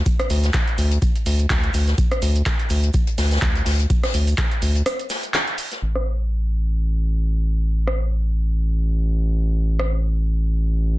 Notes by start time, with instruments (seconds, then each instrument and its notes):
0.06 kick, closed hi-hat, shaker
0.19 cross-stick, closed hi-hat, shaker
0.30 analog synth bass D2, open hi-hat, shaker
0.44 snare, closed hi-hat, shaker
0.53 kick, snare, clap, closed hi-hat, shaker
0.68 closed hi-hat, shaker
0.78 analog synth bass D2, open hi-hat, shaker
0.91 closed hi-hat, shaker
1.02 kick, closed hi-hat, shaker
1.16 closed hi-hat, shaker
1.26 analog synth bass D2, open hi-hat, shaker
1.40 closed hi-hat, shaker
1.50 analog synth bass D2, kick, snare, clap, closed hi-hat, shaker
1.64 closed hi-hat, shaker
1.73 analog synth bass D2, open hi-hat, shaker
1.87 snare, closed hi-hat, shaker
1.98 kick, closed hi-hat, shaker
2.11 cross-stick, closed hi-hat, shaker
2.22 analog synth bass D2, open hi-hat, shaker
2.35 closed hi-hat, shaker
2.46 kick, snare, clap, closed hi-hat, shaker
2.59 closed hi-hat, shaker
2.69 analog synth bass D2, open hi-hat, shaker
2.83 closed hi-hat, shaker
2.94 kick, closed hi-hat, shaker
3.07 closed hi-hat, shaker
3.18 analog synth bass D2, snare, open hi-hat, shaker
3.31 snare, closed hi-hat, shaker
3.36 snare, shaker
3.42 analog synth bass D2, kick, clap, closed hi-hat, shaker
3.55 closed hi-hat, shaker
3.65 analog synth bass D2, snare, open hi-hat, shaker
3.79 closed hi-hat, shaker
3.90 kick, closed hi-hat, shaker
4.03 cross-stick, snare, closed hi-hat, open hi-hat, shaker
4.14 analog synth bass D2, closed hi-hat, open hi-hat, shaker
4.27 closed hi-hat, shaker
4.38 kick, snare, clap, closed hi-hat, shaker
4.51 closed hi-hat, shaker
4.62 analog synth bass D2, open hi-hat, shaker
4.75 closed hi-hat, shaker
4.86 cross-stick, closed hi-hat, shaker
4.99 closed hi-hat, shaker
5.10 snare, open hi-hat, shaker
5.23 closed hi-hat, shaker
5.34 clap, closed hi-hat, shaker
5.47 closed hi-hat, shaker
5.58 open hi-hat, shaker
5.71 snare, closed hi-hat, shaker
5.82 analog synth bass A1
5.95 cross-stick
7.87 cross-stick
9.79 cross-stick